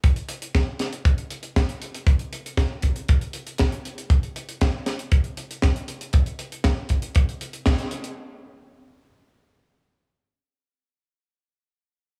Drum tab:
HH |xxxxx-xxxxxxxxxx|xxxxx-xxxxxxxxxx|xxxxx-xxxxxxxxxx|xxxxx-xxxxxxxxxx|
SD |----o-o-----o---|----o-------o---|----o-o-----o---|----o-------o---|
BD |o---o---o---o---|o---o-o-o---o---|o---o---o---o---|o---o-o-o---o---|

HH |----------------|----------------|
SD |----------------|----------------|
BD |----------------|----------------|